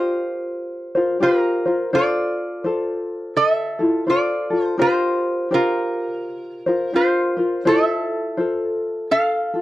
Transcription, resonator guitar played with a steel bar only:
0.00 1.18 F4 medium
0.00 1.27 C5 medium
1.23 1.90 F4 medium
1.23 1.96 A#4 medium
1.95 3.33 F4 medium
1.95 3.33 D5 medium
3.37 4.04 A4 medium
3.37 4.10 E5 medium
4.10 4.76 F4 medium
4.10 4.64 D5 medium
4.64 4.81 C5 medium
4.82 5.48 F4 medium
4.82 5.54 C5 medium
5.54 6.92 F4 medium
5.54 6.96 A#4 medium
6.96 7.63 F4 medium
6.96 7.68 C5 medium
7.67 9.07 A4 medium
7.67 9.11 E5 medium
9.11 9.62 A4 medium
9.11 9.62 F5 medium

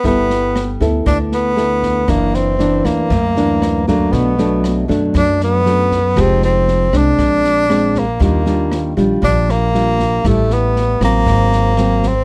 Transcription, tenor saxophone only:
0.07 0.78 B3 loud
1.07 1.18 D4 medium
1.34 2.11 B3 medium
2.10 2.37 A#3 medium
2.35 2.87 C4 medium
2.86 3.87 A#3 medium
3.87 4.14 A#3 medium
4.12 4.89 B3 medium
5.17 5.39 D4 loud
5.44 6.22 B3 medium
6.20 6.44 C4 medium
6.44 6.99 C4 medium
6.98 8.01 D4 loud
7.99 8.23 A#3 medium
8.24 8.95 A#3 medium
9.24 9.53 D4 medium
9.51 10.29 A#3 loud
10.27 10.55 A3 medium
10.53 11.03 B3 medium
11.04 12.09 A#3 loud
12.08 12.24 C4 medium

